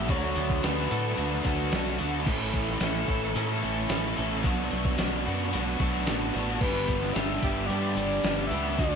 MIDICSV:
0, 0, Header, 1, 7, 480
1, 0, Start_track
1, 0, Tempo, 543478
1, 82, Time_signature, 4, 2, 24, 8
1, 7908, End_track
2, 0, Start_track
2, 0, Title_t, "Soft synth lead"
2, 0, Program_c, 0, 80
2, 0, Note_on_c, 0, 76, 112
2, 85, Note_on_c, 0, 73, 95
2, 99, Note_off_c, 0, 76, 0
2, 561, Note_on_c, 0, 71, 85
2, 575, Note_off_c, 0, 73, 0
2, 1521, Note_off_c, 0, 71, 0
2, 5823, Note_on_c, 0, 71, 102
2, 6299, Note_on_c, 0, 76, 111
2, 6312, Note_off_c, 0, 71, 0
2, 6766, Note_on_c, 0, 74, 100
2, 6779, Note_off_c, 0, 76, 0
2, 7483, Note_on_c, 0, 76, 109
2, 7496, Note_off_c, 0, 74, 0
2, 7724, Note_on_c, 0, 74, 107
2, 7737, Note_off_c, 0, 76, 0
2, 7908, Note_off_c, 0, 74, 0
2, 7908, End_track
3, 0, Start_track
3, 0, Title_t, "Overdriven electric guitar"
3, 0, Program_c, 1, 29
3, 74, Note_on_c, 1, 50, 108
3, 82, Note_on_c, 1, 57, 102
3, 87, Note_on_c, 1, 62, 117
3, 90, Note_on_c, 1, 66, 110
3, 550, Note_off_c, 1, 50, 0
3, 560, Note_on_c, 1, 50, 75
3, 563, Note_off_c, 1, 57, 0
3, 564, Note_off_c, 1, 62, 0
3, 565, Note_off_c, 1, 66, 0
3, 567, Note_on_c, 1, 57, 82
3, 575, Note_on_c, 1, 62, 76
3, 576, Note_on_c, 1, 66, 80
3, 782, Note_off_c, 1, 66, 0
3, 789, Note_off_c, 1, 62, 0
3, 792, Note_on_c, 1, 66, 78
3, 799, Note_on_c, 1, 62, 77
3, 807, Note_off_c, 1, 57, 0
3, 810, Note_on_c, 1, 57, 66
3, 1019, Note_off_c, 1, 50, 0
3, 1030, Note_on_c, 1, 50, 72
3, 1032, Note_off_c, 1, 62, 0
3, 1033, Note_off_c, 1, 57, 0
3, 1035, Note_off_c, 1, 66, 0
3, 1037, Note_on_c, 1, 57, 74
3, 1043, Note_on_c, 1, 62, 88
3, 1046, Note_on_c, 1, 66, 84
3, 1274, Note_off_c, 1, 66, 0
3, 1276, Note_off_c, 1, 62, 0
3, 1285, Note_on_c, 1, 66, 75
3, 1287, Note_on_c, 1, 62, 69
3, 1292, Note_off_c, 1, 57, 0
3, 1295, Note_on_c, 1, 57, 65
3, 1515, Note_off_c, 1, 50, 0
3, 1747, Note_off_c, 1, 66, 0
3, 1758, Note_off_c, 1, 62, 0
3, 1758, Note_on_c, 1, 66, 78
3, 1768, Note_on_c, 1, 62, 72
3, 1769, Note_off_c, 1, 57, 0
3, 1772, Note_on_c, 1, 57, 60
3, 1985, Note_off_c, 1, 66, 0
3, 1990, Note_off_c, 1, 62, 0
3, 1998, Note_on_c, 1, 45, 97
3, 2005, Note_on_c, 1, 52, 99
3, 2006, Note_off_c, 1, 57, 0
3, 2009, Note_on_c, 1, 57, 110
3, 2010, Note_on_c, 1, 61, 120
3, 2015, Note_on_c, 1, 64, 120
3, 2469, Note_off_c, 1, 52, 0
3, 2479, Note_on_c, 1, 52, 74
3, 2485, Note_off_c, 1, 57, 0
3, 2486, Note_off_c, 1, 61, 0
3, 2487, Note_off_c, 1, 64, 0
3, 2489, Note_on_c, 1, 57, 76
3, 2497, Note_on_c, 1, 61, 83
3, 2498, Note_on_c, 1, 64, 82
3, 2717, Note_off_c, 1, 64, 0
3, 2720, Note_off_c, 1, 45, 0
3, 2724, Note_off_c, 1, 61, 0
3, 2728, Note_on_c, 1, 64, 88
3, 2735, Note_on_c, 1, 61, 74
3, 2741, Note_off_c, 1, 57, 0
3, 2745, Note_on_c, 1, 57, 68
3, 2951, Note_off_c, 1, 52, 0
3, 2960, Note_off_c, 1, 57, 0
3, 2962, Note_on_c, 1, 52, 75
3, 2963, Note_off_c, 1, 61, 0
3, 2966, Note_off_c, 1, 64, 0
3, 2971, Note_on_c, 1, 57, 78
3, 2974, Note_on_c, 1, 61, 89
3, 2977, Note_on_c, 1, 64, 83
3, 3197, Note_off_c, 1, 64, 0
3, 3204, Note_off_c, 1, 61, 0
3, 3207, Note_on_c, 1, 64, 76
3, 3213, Note_off_c, 1, 57, 0
3, 3215, Note_on_c, 1, 61, 64
3, 3224, Note_on_c, 1, 57, 63
3, 3441, Note_off_c, 1, 52, 0
3, 3676, Note_off_c, 1, 64, 0
3, 3685, Note_off_c, 1, 61, 0
3, 3687, Note_on_c, 1, 64, 81
3, 3691, Note_off_c, 1, 57, 0
3, 3696, Note_on_c, 1, 61, 73
3, 3702, Note_on_c, 1, 57, 69
3, 3910, Note_off_c, 1, 64, 0
3, 3914, Note_off_c, 1, 61, 0
3, 3917, Note_off_c, 1, 57, 0
3, 3927, Note_on_c, 1, 47, 111
3, 3935, Note_on_c, 1, 54, 109
3, 3937, Note_on_c, 1, 59, 104
3, 3944, Note_on_c, 1, 62, 117
3, 3946, Note_on_c, 1, 66, 120
3, 4388, Note_off_c, 1, 54, 0
3, 4398, Note_on_c, 1, 54, 75
3, 4404, Note_off_c, 1, 59, 0
3, 4408, Note_on_c, 1, 59, 80
3, 4412, Note_off_c, 1, 62, 0
3, 4412, Note_off_c, 1, 66, 0
3, 4415, Note_on_c, 1, 62, 77
3, 4422, Note_on_c, 1, 66, 86
3, 4638, Note_off_c, 1, 66, 0
3, 4644, Note_off_c, 1, 47, 0
3, 4649, Note_on_c, 1, 66, 80
3, 4657, Note_off_c, 1, 62, 0
3, 4660, Note_on_c, 1, 62, 80
3, 4664, Note_off_c, 1, 59, 0
3, 4667, Note_on_c, 1, 59, 72
3, 4880, Note_off_c, 1, 54, 0
3, 4896, Note_on_c, 1, 54, 79
3, 4899, Note_off_c, 1, 59, 0
3, 4901, Note_off_c, 1, 66, 0
3, 4902, Note_off_c, 1, 62, 0
3, 4903, Note_on_c, 1, 59, 82
3, 4906, Note_on_c, 1, 62, 82
3, 4911, Note_on_c, 1, 66, 84
3, 5127, Note_off_c, 1, 66, 0
3, 5137, Note_on_c, 1, 66, 82
3, 5144, Note_off_c, 1, 62, 0
3, 5147, Note_on_c, 1, 62, 75
3, 5149, Note_off_c, 1, 59, 0
3, 5152, Note_on_c, 1, 59, 62
3, 5369, Note_off_c, 1, 54, 0
3, 5600, Note_off_c, 1, 66, 0
3, 5610, Note_on_c, 1, 66, 78
3, 5614, Note_off_c, 1, 62, 0
3, 5618, Note_off_c, 1, 59, 0
3, 5618, Note_on_c, 1, 62, 75
3, 5622, Note_on_c, 1, 59, 72
3, 5832, Note_off_c, 1, 66, 0
3, 5841, Note_on_c, 1, 43, 111
3, 5850, Note_off_c, 1, 59, 0
3, 5852, Note_on_c, 1, 55, 114
3, 5853, Note_on_c, 1, 50, 108
3, 5853, Note_on_c, 1, 59, 115
3, 5855, Note_off_c, 1, 62, 0
3, 5858, Note_on_c, 1, 62, 116
3, 5863, Note_on_c, 1, 67, 115
3, 6315, Note_off_c, 1, 55, 0
3, 6325, Note_on_c, 1, 55, 79
3, 6327, Note_off_c, 1, 59, 0
3, 6331, Note_on_c, 1, 59, 84
3, 6332, Note_off_c, 1, 67, 0
3, 6333, Note_off_c, 1, 62, 0
3, 6337, Note_on_c, 1, 62, 77
3, 6342, Note_on_c, 1, 67, 82
3, 6554, Note_off_c, 1, 67, 0
3, 6562, Note_off_c, 1, 43, 0
3, 6565, Note_on_c, 1, 67, 79
3, 6566, Note_off_c, 1, 55, 0
3, 6568, Note_off_c, 1, 50, 0
3, 6568, Note_off_c, 1, 62, 0
3, 6569, Note_off_c, 1, 59, 0
3, 6572, Note_on_c, 1, 59, 77
3, 6572, Note_on_c, 1, 62, 73
3, 6577, Note_on_c, 1, 55, 77
3, 6788, Note_off_c, 1, 55, 0
3, 6799, Note_on_c, 1, 55, 86
3, 6800, Note_off_c, 1, 59, 0
3, 6801, Note_off_c, 1, 62, 0
3, 6806, Note_off_c, 1, 67, 0
3, 6810, Note_on_c, 1, 59, 88
3, 6812, Note_on_c, 1, 62, 87
3, 6817, Note_on_c, 1, 67, 75
3, 7021, Note_off_c, 1, 67, 0
3, 7029, Note_off_c, 1, 62, 0
3, 7032, Note_on_c, 1, 67, 85
3, 7033, Note_off_c, 1, 59, 0
3, 7037, Note_off_c, 1, 55, 0
3, 7040, Note_on_c, 1, 62, 73
3, 7044, Note_on_c, 1, 59, 69
3, 7048, Note_on_c, 1, 55, 62
3, 7510, Note_off_c, 1, 67, 0
3, 7517, Note_off_c, 1, 59, 0
3, 7518, Note_off_c, 1, 62, 0
3, 7521, Note_on_c, 1, 67, 83
3, 7527, Note_off_c, 1, 55, 0
3, 7528, Note_on_c, 1, 59, 75
3, 7529, Note_on_c, 1, 62, 78
3, 7537, Note_on_c, 1, 55, 65
3, 7748, Note_off_c, 1, 67, 0
3, 7752, Note_off_c, 1, 59, 0
3, 7752, Note_off_c, 1, 62, 0
3, 7755, Note_off_c, 1, 55, 0
3, 7758, Note_on_c, 1, 50, 100
3, 7763, Note_on_c, 1, 57, 104
3, 7768, Note_on_c, 1, 62, 115
3, 7773, Note_on_c, 1, 66, 116
3, 7908, Note_off_c, 1, 50, 0
3, 7908, Note_off_c, 1, 57, 0
3, 7908, Note_off_c, 1, 62, 0
3, 7908, Note_off_c, 1, 66, 0
3, 7908, End_track
4, 0, Start_track
4, 0, Title_t, "Clean electric guitar"
4, 0, Program_c, 2, 27
4, 0, Note_on_c, 2, 62, 79
4, 89, Note_off_c, 2, 62, 0
4, 91, Note_on_c, 2, 54, 81
4, 335, Note_on_c, 2, 59, 77
4, 567, Note_on_c, 2, 62, 79
4, 804, Note_on_c, 2, 69, 81
4, 1024, Note_off_c, 2, 62, 0
4, 1034, Note_on_c, 2, 62, 74
4, 1275, Note_off_c, 2, 54, 0
4, 1285, Note_on_c, 2, 54, 74
4, 1510, Note_off_c, 2, 62, 0
4, 1521, Note_on_c, 2, 62, 77
4, 1528, Note_off_c, 2, 59, 0
4, 1775, Note_on_c, 2, 59, 78
4, 2001, Note_off_c, 2, 62, 0
4, 2003, Note_off_c, 2, 54, 0
4, 2008, Note_off_c, 2, 59, 0
4, 2009, Note_on_c, 2, 52, 83
4, 2259, Note_on_c, 2, 57, 72
4, 2494, Note_on_c, 2, 61, 79
4, 2720, Note_off_c, 2, 69, 0
4, 2723, Note_on_c, 2, 69, 81
4, 2956, Note_off_c, 2, 61, 0
4, 2967, Note_on_c, 2, 61, 77
4, 3196, Note_off_c, 2, 52, 0
4, 3206, Note_on_c, 2, 52, 70
4, 3437, Note_off_c, 2, 61, 0
4, 3448, Note_on_c, 2, 61, 72
4, 3450, Note_off_c, 2, 57, 0
4, 3690, Note_on_c, 2, 57, 68
4, 3918, Note_off_c, 2, 57, 0
4, 3922, Note_off_c, 2, 69, 0
4, 3924, Note_off_c, 2, 52, 0
4, 3925, Note_off_c, 2, 61, 0
4, 3929, Note_on_c, 2, 57, 86
4, 4165, Note_off_c, 2, 57, 0
4, 4175, Note_on_c, 2, 57, 78
4, 4406, Note_on_c, 2, 62, 82
4, 4652, Note_on_c, 2, 66, 75
4, 4876, Note_off_c, 2, 62, 0
4, 4879, Note_on_c, 2, 62, 77
4, 5108, Note_off_c, 2, 57, 0
4, 5119, Note_on_c, 2, 57, 70
4, 5358, Note_off_c, 2, 62, 0
4, 5361, Note_on_c, 2, 62, 79
4, 5590, Note_off_c, 2, 57, 0
4, 5601, Note_on_c, 2, 57, 71
4, 5837, Note_on_c, 2, 52, 81
4, 5841, Note_off_c, 2, 57, 0
4, 5847, Note_off_c, 2, 66, 0
4, 5864, Note_off_c, 2, 62, 0
4, 6086, Note_on_c, 2, 59, 67
4, 6319, Note_on_c, 2, 62, 76
4, 6564, Note_on_c, 2, 67, 85
4, 6787, Note_off_c, 2, 62, 0
4, 6798, Note_on_c, 2, 62, 75
4, 7024, Note_off_c, 2, 52, 0
4, 7034, Note_on_c, 2, 52, 76
4, 7272, Note_off_c, 2, 62, 0
4, 7283, Note_on_c, 2, 62, 77
4, 7286, Note_off_c, 2, 59, 0
4, 7527, Note_on_c, 2, 59, 79
4, 7760, Note_off_c, 2, 52, 0
4, 7764, Note_off_c, 2, 62, 0
4, 7764, Note_on_c, 2, 54, 83
4, 7765, Note_off_c, 2, 67, 0
4, 7766, Note_off_c, 2, 59, 0
4, 7908, Note_off_c, 2, 54, 0
4, 7908, End_track
5, 0, Start_track
5, 0, Title_t, "Overdriven electric guitar"
5, 0, Program_c, 3, 29
5, 73, Note_on_c, 3, 54, 112
5, 540, Note_off_c, 3, 54, 0
5, 550, Note_on_c, 3, 54, 83
5, 1032, Note_off_c, 3, 54, 0
5, 1042, Note_on_c, 3, 54, 94
5, 1522, Note_off_c, 3, 54, 0
5, 2014, Note_on_c, 3, 69, 109
5, 2496, Note_off_c, 3, 69, 0
5, 2500, Note_on_c, 3, 69, 81
5, 2958, Note_on_c, 3, 45, 90
5, 2969, Note_off_c, 3, 69, 0
5, 2980, Note_on_c, 3, 69, 105
5, 3194, Note_off_c, 3, 69, 0
5, 3205, Note_on_c, 3, 69, 73
5, 3439, Note_off_c, 3, 45, 0
5, 3662, Note_off_c, 3, 69, 0
5, 3673, Note_on_c, 3, 69, 82
5, 3903, Note_off_c, 3, 69, 0
5, 4862, Note_on_c, 3, 47, 96
5, 5352, Note_off_c, 3, 47, 0
5, 6789, Note_on_c, 3, 43, 91
5, 6802, Note_on_c, 3, 50, 100
5, 7276, Note_off_c, 3, 43, 0
5, 7283, Note_off_c, 3, 50, 0
5, 7908, End_track
6, 0, Start_track
6, 0, Title_t, "Fingered electric bass"
6, 0, Program_c, 4, 33
6, 82, Note_on_c, 4, 38, 115
6, 313, Note_off_c, 4, 38, 0
6, 324, Note_on_c, 4, 38, 90
6, 554, Note_off_c, 4, 38, 0
6, 573, Note_on_c, 4, 38, 104
6, 799, Note_off_c, 4, 38, 0
6, 809, Note_on_c, 4, 45, 96
6, 1037, Note_off_c, 4, 45, 0
6, 1045, Note_on_c, 4, 38, 99
6, 1275, Note_off_c, 4, 38, 0
6, 1280, Note_on_c, 4, 38, 94
6, 1512, Note_off_c, 4, 38, 0
6, 1529, Note_on_c, 4, 35, 104
6, 1757, Note_off_c, 4, 35, 0
6, 1764, Note_on_c, 4, 38, 95
6, 1994, Note_off_c, 4, 38, 0
6, 2000, Note_on_c, 4, 33, 98
6, 2464, Note_off_c, 4, 33, 0
6, 2481, Note_on_c, 4, 33, 92
6, 2712, Note_off_c, 4, 33, 0
6, 2719, Note_on_c, 4, 33, 88
6, 2952, Note_off_c, 4, 33, 0
6, 2967, Note_on_c, 4, 45, 97
6, 3196, Note_off_c, 4, 45, 0
6, 3211, Note_on_c, 4, 33, 96
6, 3438, Note_off_c, 4, 33, 0
6, 3445, Note_on_c, 4, 33, 104
6, 3675, Note_off_c, 4, 33, 0
6, 3697, Note_on_c, 4, 33, 100
6, 3921, Note_off_c, 4, 33, 0
6, 3926, Note_on_c, 4, 35, 111
6, 4155, Note_off_c, 4, 35, 0
6, 4174, Note_on_c, 4, 35, 95
6, 4399, Note_off_c, 4, 35, 0
6, 4418, Note_on_c, 4, 35, 92
6, 4642, Note_off_c, 4, 35, 0
6, 4662, Note_on_c, 4, 42, 94
6, 4884, Note_off_c, 4, 42, 0
6, 4900, Note_on_c, 4, 35, 102
6, 5117, Note_off_c, 4, 35, 0
6, 5123, Note_on_c, 4, 35, 93
6, 5354, Note_off_c, 4, 35, 0
6, 5379, Note_on_c, 4, 33, 96
6, 5602, Note_off_c, 4, 33, 0
6, 5611, Note_on_c, 4, 33, 98
6, 5842, Note_on_c, 4, 31, 116
6, 5855, Note_off_c, 4, 33, 0
6, 6305, Note_off_c, 4, 31, 0
6, 6326, Note_on_c, 4, 31, 99
6, 6554, Note_off_c, 4, 31, 0
6, 6559, Note_on_c, 4, 31, 87
6, 6793, Note_off_c, 4, 31, 0
6, 6796, Note_on_c, 4, 43, 103
6, 7031, Note_off_c, 4, 43, 0
6, 7038, Note_on_c, 4, 31, 96
6, 7272, Note_off_c, 4, 31, 0
6, 7276, Note_on_c, 4, 31, 91
6, 7512, Note_off_c, 4, 31, 0
6, 7515, Note_on_c, 4, 37, 103
6, 7751, Note_off_c, 4, 37, 0
6, 7761, Note_on_c, 4, 38, 111
6, 7908, Note_off_c, 4, 38, 0
6, 7908, End_track
7, 0, Start_track
7, 0, Title_t, "Drums"
7, 80, Note_on_c, 9, 36, 118
7, 81, Note_on_c, 9, 46, 93
7, 168, Note_off_c, 9, 36, 0
7, 169, Note_off_c, 9, 46, 0
7, 315, Note_on_c, 9, 46, 66
7, 403, Note_off_c, 9, 46, 0
7, 440, Note_on_c, 9, 36, 97
7, 529, Note_off_c, 9, 36, 0
7, 559, Note_on_c, 9, 46, 100
7, 565, Note_on_c, 9, 38, 115
7, 647, Note_off_c, 9, 46, 0
7, 654, Note_off_c, 9, 38, 0
7, 804, Note_on_c, 9, 46, 72
7, 892, Note_off_c, 9, 46, 0
7, 1036, Note_on_c, 9, 46, 96
7, 1125, Note_off_c, 9, 46, 0
7, 1277, Note_on_c, 9, 46, 71
7, 1280, Note_on_c, 9, 36, 91
7, 1366, Note_off_c, 9, 46, 0
7, 1369, Note_off_c, 9, 36, 0
7, 1519, Note_on_c, 9, 46, 94
7, 1525, Note_on_c, 9, 38, 115
7, 1607, Note_off_c, 9, 46, 0
7, 1613, Note_off_c, 9, 38, 0
7, 1753, Note_on_c, 9, 46, 68
7, 1842, Note_off_c, 9, 46, 0
7, 2001, Note_on_c, 9, 36, 125
7, 2004, Note_on_c, 9, 49, 118
7, 2089, Note_off_c, 9, 36, 0
7, 2092, Note_off_c, 9, 49, 0
7, 2242, Note_on_c, 9, 36, 81
7, 2243, Note_on_c, 9, 46, 64
7, 2330, Note_off_c, 9, 36, 0
7, 2331, Note_off_c, 9, 46, 0
7, 2373, Note_on_c, 9, 38, 34
7, 2461, Note_off_c, 9, 38, 0
7, 2475, Note_on_c, 9, 46, 84
7, 2481, Note_on_c, 9, 38, 116
7, 2563, Note_off_c, 9, 46, 0
7, 2569, Note_off_c, 9, 38, 0
7, 2721, Note_on_c, 9, 36, 101
7, 2721, Note_on_c, 9, 46, 68
7, 2809, Note_off_c, 9, 36, 0
7, 2809, Note_off_c, 9, 46, 0
7, 2965, Note_on_c, 9, 46, 89
7, 3053, Note_off_c, 9, 46, 0
7, 3201, Note_on_c, 9, 46, 66
7, 3290, Note_off_c, 9, 46, 0
7, 3437, Note_on_c, 9, 46, 89
7, 3443, Note_on_c, 9, 38, 120
7, 3525, Note_off_c, 9, 46, 0
7, 3531, Note_off_c, 9, 38, 0
7, 3681, Note_on_c, 9, 46, 76
7, 3769, Note_off_c, 9, 46, 0
7, 3924, Note_on_c, 9, 36, 127
7, 3926, Note_on_c, 9, 46, 92
7, 4012, Note_off_c, 9, 36, 0
7, 4014, Note_off_c, 9, 46, 0
7, 4161, Note_on_c, 9, 46, 67
7, 4249, Note_off_c, 9, 46, 0
7, 4283, Note_on_c, 9, 36, 86
7, 4371, Note_off_c, 9, 36, 0
7, 4398, Note_on_c, 9, 46, 93
7, 4404, Note_on_c, 9, 38, 119
7, 4487, Note_off_c, 9, 46, 0
7, 4493, Note_off_c, 9, 38, 0
7, 4642, Note_on_c, 9, 46, 74
7, 4730, Note_off_c, 9, 46, 0
7, 4884, Note_on_c, 9, 46, 95
7, 4972, Note_off_c, 9, 46, 0
7, 5120, Note_on_c, 9, 46, 72
7, 5121, Note_on_c, 9, 36, 99
7, 5208, Note_off_c, 9, 46, 0
7, 5210, Note_off_c, 9, 36, 0
7, 5357, Note_on_c, 9, 46, 95
7, 5364, Note_on_c, 9, 38, 123
7, 5446, Note_off_c, 9, 46, 0
7, 5452, Note_off_c, 9, 38, 0
7, 5597, Note_on_c, 9, 46, 70
7, 5685, Note_off_c, 9, 46, 0
7, 5838, Note_on_c, 9, 49, 107
7, 5840, Note_on_c, 9, 36, 127
7, 5926, Note_off_c, 9, 49, 0
7, 5928, Note_off_c, 9, 36, 0
7, 6077, Note_on_c, 9, 46, 67
7, 6079, Note_on_c, 9, 36, 87
7, 6165, Note_off_c, 9, 46, 0
7, 6167, Note_off_c, 9, 36, 0
7, 6204, Note_on_c, 9, 38, 36
7, 6293, Note_off_c, 9, 38, 0
7, 6319, Note_on_c, 9, 46, 89
7, 6325, Note_on_c, 9, 38, 109
7, 6407, Note_off_c, 9, 46, 0
7, 6414, Note_off_c, 9, 38, 0
7, 6559, Note_on_c, 9, 46, 69
7, 6560, Note_on_c, 9, 36, 92
7, 6647, Note_off_c, 9, 46, 0
7, 6648, Note_off_c, 9, 36, 0
7, 6800, Note_on_c, 9, 46, 88
7, 6888, Note_off_c, 9, 46, 0
7, 7038, Note_on_c, 9, 46, 70
7, 7127, Note_off_c, 9, 46, 0
7, 7276, Note_on_c, 9, 46, 94
7, 7282, Note_on_c, 9, 38, 119
7, 7364, Note_off_c, 9, 46, 0
7, 7370, Note_off_c, 9, 38, 0
7, 7518, Note_on_c, 9, 46, 66
7, 7606, Note_off_c, 9, 46, 0
7, 7760, Note_on_c, 9, 36, 120
7, 7761, Note_on_c, 9, 46, 98
7, 7849, Note_off_c, 9, 36, 0
7, 7849, Note_off_c, 9, 46, 0
7, 7908, End_track
0, 0, End_of_file